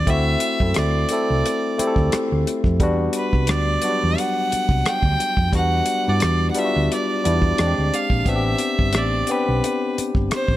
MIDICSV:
0, 0, Header, 1, 6, 480
1, 0, Start_track
1, 0, Key_signature, 1, "minor"
1, 0, Tempo, 681818
1, 51, Time_signature, 4, 2, 24, 8
1, 7439, End_track
2, 0, Start_track
2, 0, Title_t, "Fiddle"
2, 0, Program_c, 0, 110
2, 0, Note_on_c, 0, 74, 84
2, 72, Note_on_c, 0, 76, 88
2, 82, Note_off_c, 0, 74, 0
2, 549, Note_on_c, 0, 74, 74
2, 560, Note_off_c, 0, 76, 0
2, 1500, Note_off_c, 0, 74, 0
2, 2233, Note_on_c, 0, 71, 71
2, 2468, Note_on_c, 0, 74, 83
2, 2478, Note_off_c, 0, 71, 0
2, 2950, Note_on_c, 0, 78, 96
2, 2960, Note_off_c, 0, 74, 0
2, 3433, Note_on_c, 0, 79, 104
2, 3444, Note_off_c, 0, 78, 0
2, 3902, Note_off_c, 0, 79, 0
2, 3913, Note_on_c, 0, 78, 102
2, 4292, Note_on_c, 0, 74, 92
2, 4303, Note_off_c, 0, 78, 0
2, 4573, Note_off_c, 0, 74, 0
2, 4577, Note_on_c, 0, 78, 53
2, 4637, Note_on_c, 0, 76, 82
2, 4647, Note_off_c, 0, 78, 0
2, 4864, Note_off_c, 0, 76, 0
2, 4881, Note_on_c, 0, 74, 83
2, 5593, Note_on_c, 0, 77, 75
2, 5604, Note_off_c, 0, 74, 0
2, 5837, Note_on_c, 0, 76, 85
2, 5848, Note_off_c, 0, 77, 0
2, 6319, Note_on_c, 0, 74, 81
2, 6330, Note_off_c, 0, 76, 0
2, 6558, Note_on_c, 0, 71, 77
2, 6569, Note_off_c, 0, 74, 0
2, 7025, Note_off_c, 0, 71, 0
2, 7279, Note_on_c, 0, 72, 86
2, 7439, Note_off_c, 0, 72, 0
2, 7439, End_track
3, 0, Start_track
3, 0, Title_t, "Tine electric piano"
3, 0, Program_c, 1, 4
3, 0, Control_c, 1, 64, 127
3, 46, Note_on_c, 1, 57, 80
3, 54, Note_on_c, 1, 60, 80
3, 58, Note_on_c, 1, 64, 72
3, 59, Control_c, 1, 64, 0
3, 69, Note_on_c, 1, 66, 88
3, 167, Control_c, 1, 64, 127
3, 330, Note_off_c, 1, 57, 0
3, 335, Note_off_c, 1, 60, 0
3, 336, Note_off_c, 1, 64, 0
3, 342, Note_off_c, 1, 66, 0
3, 426, Note_on_c, 1, 57, 59
3, 430, Note_on_c, 1, 60, 49
3, 438, Note_on_c, 1, 64, 51
3, 443, Note_on_c, 1, 69, 61
3, 699, Note_off_c, 1, 57, 0
3, 701, Note_off_c, 1, 60, 0
3, 705, Note_off_c, 1, 64, 0
3, 707, Note_off_c, 1, 69, 0
3, 778, Note_on_c, 1, 57, 64
3, 785, Note_on_c, 1, 60, 65
3, 791, Note_on_c, 1, 64, 62
3, 797, Note_on_c, 1, 69, 73
3, 1156, Note_off_c, 1, 57, 0
3, 1159, Note_off_c, 1, 60, 0
3, 1163, Note_off_c, 1, 64, 0
3, 1165, Note_off_c, 1, 69, 0
3, 1252, Note_on_c, 1, 57, 73
3, 1258, Note_on_c, 1, 60, 72
3, 1265, Note_on_c, 1, 64, 68
3, 1273, Note_on_c, 1, 67, 63
3, 1312, Note_off_c, 1, 67, 0
3, 1318, Note_on_c, 1, 69, 79
3, 1815, Note_off_c, 1, 57, 0
3, 1818, Note_off_c, 1, 60, 0
3, 1822, Note_off_c, 1, 64, 0
3, 1848, Note_off_c, 1, 69, 0
3, 1972, Note_on_c, 1, 55, 97
3, 1979, Control_c, 1, 64, 0
3, 1979, Note_on_c, 1, 59, 85
3, 1989, Note_on_c, 1, 62, 85
3, 1993, Note_on_c, 1, 66, 102
3, 2123, Control_c, 1, 64, 127
3, 2536, Note_off_c, 1, 55, 0
3, 2539, Note_off_c, 1, 59, 0
3, 2544, Note_off_c, 1, 62, 0
3, 2546, Note_off_c, 1, 66, 0
3, 2694, Note_on_c, 1, 54, 54
3, 2698, Note_on_c, 1, 59, 60
3, 2705, Note_on_c, 1, 62, 60
3, 2713, Note_on_c, 1, 66, 70
3, 2738, Note_on_c, 1, 55, 71
3, 2743, Note_off_c, 1, 54, 0
3, 3439, Note_off_c, 1, 59, 0
3, 3442, Note_off_c, 1, 62, 0
3, 3446, Note_off_c, 1, 66, 0
3, 3459, Note_off_c, 1, 55, 0
3, 3891, Note_on_c, 1, 55, 77
3, 3896, Note_on_c, 1, 59, 71
3, 3904, Note_on_c, 1, 62, 75
3, 3909, Note_on_c, 1, 66, 90
3, 4173, Note_off_c, 1, 55, 0
3, 4176, Note_off_c, 1, 59, 0
3, 4180, Note_off_c, 1, 62, 0
3, 4182, Note_off_c, 1, 66, 0
3, 4268, Note_on_c, 1, 55, 55
3, 4274, Note_on_c, 1, 59, 47
3, 4282, Note_on_c, 1, 62, 52
3, 4289, Note_on_c, 1, 64, 57
3, 4540, Note_off_c, 1, 55, 0
3, 4543, Note_off_c, 1, 59, 0
3, 4547, Note_off_c, 1, 62, 0
3, 4550, Note_off_c, 1, 64, 0
3, 4613, Note_on_c, 1, 55, 72
3, 4621, Note_on_c, 1, 59, 62
3, 4629, Note_on_c, 1, 62, 62
3, 4634, Note_on_c, 1, 65, 63
3, 4673, Note_off_c, 1, 65, 0
3, 4680, Note_on_c, 1, 66, 72
3, 4994, Note_off_c, 1, 55, 0
3, 4998, Note_off_c, 1, 59, 0
3, 5002, Note_off_c, 1, 62, 0
3, 5027, Note_off_c, 1, 66, 0
3, 5094, Note_on_c, 1, 55, 67
3, 5102, Note_on_c, 1, 59, 53
3, 5108, Note_on_c, 1, 62, 58
3, 5114, Note_on_c, 1, 64, 65
3, 5333, Note_off_c, 1, 55, 0
3, 5336, Note_off_c, 1, 59, 0
3, 5338, Control_c, 1, 64, 0
3, 5338, Note_on_c, 1, 56, 69
3, 5340, Note_off_c, 1, 62, 0
3, 5342, Note_off_c, 1, 64, 0
3, 5342, Note_on_c, 1, 60, 65
3, 5353, Note_on_c, 1, 62, 64
3, 5355, Note_on_c, 1, 66, 59
3, 5393, Note_off_c, 1, 66, 0
3, 5400, Note_on_c, 1, 67, 75
3, 5480, Control_c, 1, 64, 127
3, 5728, Note_off_c, 1, 56, 0
3, 5730, Note_off_c, 1, 60, 0
3, 5735, Note_off_c, 1, 62, 0
3, 5759, Note_off_c, 1, 67, 0
3, 5815, Note_on_c, 1, 59, 85
3, 5819, Control_c, 1, 64, 0
3, 5824, Note_on_c, 1, 60, 74
3, 5830, Note_on_c, 1, 62, 74
3, 5836, Note_on_c, 1, 66, 63
3, 5874, Note_off_c, 1, 66, 0
3, 5883, Note_on_c, 1, 67, 92
3, 5961, Control_c, 1, 64, 127
3, 6377, Note_off_c, 1, 59, 0
3, 6382, Note_off_c, 1, 60, 0
3, 6385, Note_off_c, 1, 62, 0
3, 6411, Note_off_c, 1, 67, 0
3, 6540, Note_on_c, 1, 59, 66
3, 6544, Note_on_c, 1, 60, 60
3, 6554, Note_on_c, 1, 62, 62
3, 6559, Note_on_c, 1, 67, 79
3, 7280, Note_off_c, 1, 59, 0
3, 7282, Note_off_c, 1, 60, 0
3, 7287, Note_off_c, 1, 62, 0
3, 7289, Note_off_c, 1, 67, 0
3, 7439, End_track
4, 0, Start_track
4, 0, Title_t, "Fingered electric bass"
4, 0, Program_c, 2, 33
4, 59, Note_on_c, 2, 38, 89
4, 245, Note_off_c, 2, 38, 0
4, 431, Note_on_c, 2, 42, 91
4, 514, Note_off_c, 2, 42, 0
4, 546, Note_on_c, 2, 38, 78
4, 730, Note_off_c, 2, 38, 0
4, 917, Note_on_c, 2, 36, 82
4, 997, Note_off_c, 2, 36, 0
4, 1389, Note_on_c, 2, 38, 77
4, 1472, Note_off_c, 2, 38, 0
4, 1634, Note_on_c, 2, 38, 73
4, 1715, Note_off_c, 2, 38, 0
4, 1868, Note_on_c, 2, 41, 77
4, 1980, Note_off_c, 2, 41, 0
4, 1980, Note_on_c, 2, 40, 83
4, 2166, Note_off_c, 2, 40, 0
4, 2351, Note_on_c, 2, 36, 76
4, 2466, Note_off_c, 2, 36, 0
4, 2466, Note_on_c, 2, 38, 85
4, 2650, Note_off_c, 2, 38, 0
4, 2840, Note_on_c, 2, 40, 79
4, 2919, Note_off_c, 2, 40, 0
4, 3311, Note_on_c, 2, 36, 68
4, 3393, Note_off_c, 2, 36, 0
4, 3545, Note_on_c, 2, 38, 80
4, 3630, Note_off_c, 2, 38, 0
4, 3788, Note_on_c, 2, 41, 72
4, 3871, Note_off_c, 2, 41, 0
4, 3900, Note_on_c, 2, 40, 96
4, 4086, Note_off_c, 2, 40, 0
4, 4281, Note_on_c, 2, 43, 72
4, 4360, Note_off_c, 2, 43, 0
4, 4386, Note_on_c, 2, 40, 77
4, 4570, Note_off_c, 2, 40, 0
4, 4761, Note_on_c, 2, 38, 69
4, 4839, Note_off_c, 2, 38, 0
4, 5109, Note_on_c, 2, 40, 79
4, 5292, Note_off_c, 2, 40, 0
4, 5347, Note_on_c, 2, 40, 88
4, 5445, Note_off_c, 2, 40, 0
4, 5479, Note_on_c, 2, 38, 74
4, 5558, Note_off_c, 2, 38, 0
4, 5709, Note_on_c, 2, 34, 88
4, 5792, Note_off_c, 2, 34, 0
4, 5821, Note_on_c, 2, 33, 90
4, 6007, Note_off_c, 2, 33, 0
4, 6195, Note_on_c, 2, 31, 79
4, 6309, Note_off_c, 2, 31, 0
4, 6309, Note_on_c, 2, 33, 82
4, 6492, Note_off_c, 2, 33, 0
4, 6678, Note_on_c, 2, 35, 78
4, 6758, Note_off_c, 2, 35, 0
4, 7153, Note_on_c, 2, 31, 71
4, 7235, Note_off_c, 2, 31, 0
4, 7389, Note_on_c, 2, 33, 77
4, 7439, Note_off_c, 2, 33, 0
4, 7439, End_track
5, 0, Start_track
5, 0, Title_t, "Muted fingered electric bass strokes"
5, 1261, Note_on_c, 9, 29, 40
5, 1332, Note_off_c, 9, 29, 0
5, 3188, Note_on_c, 9, 29, 40
5, 3258, Note_off_c, 9, 29, 0
5, 7027, Note_on_c, 9, 29, 42
5, 7098, Note_off_c, 9, 29, 0
5, 7272, Note_on_c, 9, 29, 39
5, 7343, Note_off_c, 9, 29, 0
5, 7439, End_track
6, 0, Start_track
6, 0, Title_t, "Drums"
6, 50, Note_on_c, 9, 36, 97
6, 51, Note_on_c, 9, 42, 69
6, 120, Note_off_c, 9, 36, 0
6, 122, Note_off_c, 9, 42, 0
6, 283, Note_on_c, 9, 42, 65
6, 353, Note_off_c, 9, 42, 0
6, 424, Note_on_c, 9, 36, 70
6, 494, Note_off_c, 9, 36, 0
6, 523, Note_on_c, 9, 42, 72
6, 538, Note_on_c, 9, 37, 93
6, 594, Note_off_c, 9, 42, 0
6, 608, Note_off_c, 9, 37, 0
6, 765, Note_on_c, 9, 42, 55
6, 836, Note_off_c, 9, 42, 0
6, 1025, Note_on_c, 9, 42, 65
6, 1095, Note_off_c, 9, 42, 0
6, 1263, Note_on_c, 9, 42, 60
6, 1333, Note_off_c, 9, 42, 0
6, 1380, Note_on_c, 9, 36, 71
6, 1451, Note_off_c, 9, 36, 0
6, 1494, Note_on_c, 9, 42, 73
6, 1499, Note_on_c, 9, 37, 85
6, 1565, Note_off_c, 9, 42, 0
6, 1570, Note_off_c, 9, 37, 0
6, 1741, Note_on_c, 9, 42, 47
6, 1811, Note_off_c, 9, 42, 0
6, 1859, Note_on_c, 9, 36, 71
6, 1930, Note_off_c, 9, 36, 0
6, 1970, Note_on_c, 9, 36, 91
6, 1971, Note_on_c, 9, 42, 66
6, 2040, Note_off_c, 9, 36, 0
6, 2042, Note_off_c, 9, 42, 0
6, 2203, Note_on_c, 9, 42, 59
6, 2273, Note_off_c, 9, 42, 0
6, 2344, Note_on_c, 9, 36, 70
6, 2415, Note_off_c, 9, 36, 0
6, 2444, Note_on_c, 9, 42, 70
6, 2458, Note_on_c, 9, 37, 99
6, 2514, Note_off_c, 9, 42, 0
6, 2529, Note_off_c, 9, 37, 0
6, 2687, Note_on_c, 9, 42, 61
6, 2757, Note_off_c, 9, 42, 0
6, 2945, Note_on_c, 9, 42, 59
6, 3016, Note_off_c, 9, 42, 0
6, 3184, Note_on_c, 9, 42, 59
6, 3254, Note_off_c, 9, 42, 0
6, 3301, Note_on_c, 9, 36, 83
6, 3372, Note_off_c, 9, 36, 0
6, 3418, Note_on_c, 9, 42, 64
6, 3423, Note_on_c, 9, 37, 100
6, 3489, Note_off_c, 9, 42, 0
6, 3494, Note_off_c, 9, 37, 0
6, 3538, Note_on_c, 9, 36, 74
6, 3609, Note_off_c, 9, 36, 0
6, 3662, Note_on_c, 9, 42, 52
6, 3732, Note_off_c, 9, 42, 0
6, 3780, Note_on_c, 9, 36, 65
6, 3851, Note_off_c, 9, 36, 0
6, 3891, Note_on_c, 9, 36, 89
6, 3894, Note_on_c, 9, 42, 66
6, 3961, Note_off_c, 9, 36, 0
6, 3965, Note_off_c, 9, 42, 0
6, 4123, Note_on_c, 9, 42, 65
6, 4193, Note_off_c, 9, 42, 0
6, 4367, Note_on_c, 9, 42, 66
6, 4381, Note_on_c, 9, 37, 89
6, 4437, Note_off_c, 9, 42, 0
6, 4452, Note_off_c, 9, 37, 0
6, 4608, Note_on_c, 9, 42, 64
6, 4678, Note_off_c, 9, 42, 0
6, 4870, Note_on_c, 9, 42, 58
6, 4940, Note_off_c, 9, 42, 0
6, 5107, Note_on_c, 9, 42, 61
6, 5177, Note_off_c, 9, 42, 0
6, 5223, Note_on_c, 9, 36, 71
6, 5293, Note_off_c, 9, 36, 0
6, 5339, Note_on_c, 9, 42, 67
6, 5344, Note_on_c, 9, 37, 97
6, 5409, Note_off_c, 9, 42, 0
6, 5414, Note_off_c, 9, 37, 0
6, 5587, Note_on_c, 9, 42, 55
6, 5658, Note_off_c, 9, 42, 0
6, 5702, Note_on_c, 9, 36, 72
6, 5773, Note_off_c, 9, 36, 0
6, 5813, Note_on_c, 9, 36, 97
6, 5815, Note_on_c, 9, 42, 69
6, 5884, Note_off_c, 9, 36, 0
6, 5885, Note_off_c, 9, 42, 0
6, 6044, Note_on_c, 9, 42, 63
6, 6114, Note_off_c, 9, 42, 0
6, 6187, Note_on_c, 9, 36, 73
6, 6258, Note_off_c, 9, 36, 0
6, 6284, Note_on_c, 9, 42, 69
6, 6299, Note_on_c, 9, 37, 94
6, 6355, Note_off_c, 9, 42, 0
6, 6369, Note_off_c, 9, 37, 0
6, 6526, Note_on_c, 9, 42, 55
6, 6596, Note_off_c, 9, 42, 0
6, 6786, Note_on_c, 9, 42, 63
6, 6857, Note_off_c, 9, 42, 0
6, 7028, Note_on_c, 9, 42, 60
6, 7098, Note_off_c, 9, 42, 0
6, 7144, Note_on_c, 9, 36, 80
6, 7215, Note_off_c, 9, 36, 0
6, 7259, Note_on_c, 9, 42, 73
6, 7264, Note_on_c, 9, 37, 99
6, 7329, Note_off_c, 9, 42, 0
6, 7334, Note_off_c, 9, 37, 0
6, 7381, Note_on_c, 9, 36, 81
6, 7439, Note_off_c, 9, 36, 0
6, 7439, End_track
0, 0, End_of_file